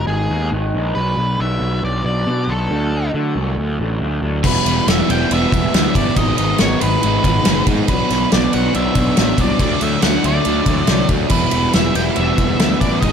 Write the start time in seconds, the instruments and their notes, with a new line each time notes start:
Already playing: clean electric guitar G#2 D#3 G#3 B3 D#4
0.07 picked electric bass G#1, lead electric guitar G#4
0.30 picked electric bass D#2, clean electric guitar G#3 B3 D#4
0.52 picked electric bass G#1, clean electric guitar D#3 G#3 B3 D#4
0.74 picked electric bass A#1, clean electric guitar G#3 B3 D#4
0.95 picked electric bass B1, clean electric guitar B2 F#3 B3 D4, lead electric guitar B4
1.17 picked electric bass B1, clean electric guitar F#3 B3 D4
1.38 picked electric bass B1, clean electric guitar B2 F#3 B3 D4, lead electric guitar E5
1.61 picked electric bass B1
1.83 picked electric bass B1, lead electric guitar D5
2.03 picked electric bass B1, clean electric guitar F#3 B3 D4, lead electric guitar D5
2.26 clean electric guitar B2 F#3 B3 D4, picked electric bass B2
2.47 picked electric bass B1, clean electric guitar F#3 B3 D4, lead electric guitar A4
2.69 picked electric bass D2, clean electric guitar D3 F#3 A3 D4
2.91 clean electric guitar F#3 A3 D4
3.12 clean electric guitar D3 F#3 A3 D4, picked electric bass D3
3.35 picked electric bass C2
3.57 picked electric bass D2
3.78 picked electric bass A1, clean electric guitar F#3 A3 D4
4.00 picked electric bass D2, clean electric guitar D3 F#3 A3 D4
4.22 picked electric bass D2, clean electric guitar F#3 A3 D4
4.44 picked electric bass E1, overdriven electric guitar E3 G3 B3 E4, lead electric guitar B4, kick, crash
4.65 picked electric bass E1, overdriven electric guitar G3 B3 E4, ride
4.87 picked electric bass E1, overdriven electric guitar E3 G3 B3 E4, lead electric guitar E5, snare, ride
5.09 picked electric bass E1, overdriven electric guitar E3 G3 B3 E4, lead electric guitar G5, ride
5.30 picked electric bass E1, overdriven electric guitar E3 G3 B3 E4, lead electric guitar E5, ride
5.52 picked electric bass E1, overdriven electric guitar E3 G3 B3 E4, kick, ride
5.73 picked electric bass D2, overdriven electric guitar E3 G3 B3 E4, lead electric guitar E5, snare, ride
5.94 picked electric bass G1, overdriven electric guitar G3 B3 E4, lead electric guitar D5, kick, ride
6.16 picked electric bass G#1, overdriven electric guitar G#2 D#3 G#3 B3 D#4, lead electric guitar D#5, kick, ride
6.37 picked electric bass G#1, overdriven electric guitar G#3 B3 D#4, lead electric guitar D#5, ride
6.58 picked electric bass G#1, overdriven electric guitar D#3 G#3 B3 D#4, lead electric guitar C#5, snare, ride
6.80 picked electric bass G#1, overdriven electric guitar G#2 D#3 G#3 B3 D#4, lead electric guitar B4, ride
7.03 picked electric bass G#1, overdriven electric guitar D#3 G#3 B3 D#4, ride
7.24 picked electric bass G#1, overdriven electric guitar G#2 D#3 G#3 B3 D#4, kick, ride
7.45 picked electric bass F#1, overdriven electric guitar D#3 G#3 B3 D#4, snare, ride
7.66 picked electric bass G#2, overdriven electric guitar G#3 B3 D#4, kick, ride
7.88 picked electric bass B1, overdriven electric guitar B2 F#3 B3 D4, lead electric guitar B4, kick, ride
8.10 picked electric bass B1, overdriven electric guitar F#3 B3 D4, snare, ride
8.31 picked electric bass B1, overdriven electric guitar B2 F#3 B3 D4, lead electric guitar D5, snare, ride
8.52 picked electric bass B1, overdriven electric guitar B2 F#3 B3 D4, lead electric guitar F#5, ride
8.73 picked electric bass B1, overdriven electric guitar B2 F#3 B3 D4, lead electric guitar E5, ride
8.94 picked electric bass B1, overdriven electric guitar B2 F#3 B3 D4, kick, ride
9.16 picked electric bass A1, overdriven electric guitar B2 F#3 B3 D4, lead electric guitar E5, snare, ride
9.37 picked electric bass C2, overdriven electric guitar F#3 B3 D4, lead electric guitar D5, kick, ride
9.58 picked electric bass D2, overdriven electric guitar D3 F#3 A3 D4, lead electric guitar D5, kick, ride
9.80 picked electric bass D2, overdriven electric guitar F#3 A3 D4, lead electric guitar E5, ride
10.01 picked electric bass D2, overdriven electric guitar D3 F#3 A3 D4, lead electric guitar F#5, snare, ride
10.23 picked electric bass D2, overdriven electric guitar D3 F#3 A3 D4, lead electric guitar D5, ride
10.44 picked electric bass D2, overdriven electric guitar D3 F#3 A3 D4, ride
10.66 picked electric bass D2, overdriven electric guitar D3 F#3 A3 D4, kick, ride
10.86 picked electric bass C2, overdriven electric guitar D3 F#3 A3 D4, snare, ride
11.08 picked electric bass D2, overdriven electric guitar F#3 A3 D4, kick, ride
11.29 picked electric bass E1, overdriven electric guitar E3 G3 B3 E4, lead electric guitar B4, kick, crash
11.51 picked electric bass E1, overdriven electric guitar G3 B3 E4, ride
11.73 picked electric bass E1, overdriven electric guitar E3 G3 B3 E4, lead electric guitar E5, snare, ride
11.95 picked electric bass E1, overdriven electric guitar E3 G3 B3 E4, lead electric guitar G5, ride
12.16 picked electric bass E1, overdriven electric guitar E3 G3 B3 E4, lead electric guitar E5, ride
12.38 picked electric bass E1, overdriven electric guitar E3 G3 B3 E4, kick, ride
12.59 picked electric bass D2, overdriven electric guitar E3 G3 B3 E4, lead electric guitar E5, snare, ride
12.80 picked electric bass A1, overdriven electric guitar G3 B3 E4, lead electric guitar D5, kick, ride
13.01 picked electric bass G#1, overdriven electric guitar G#2 D#3 G#3 B3 D#4, lead electric guitar D#5, kick, ride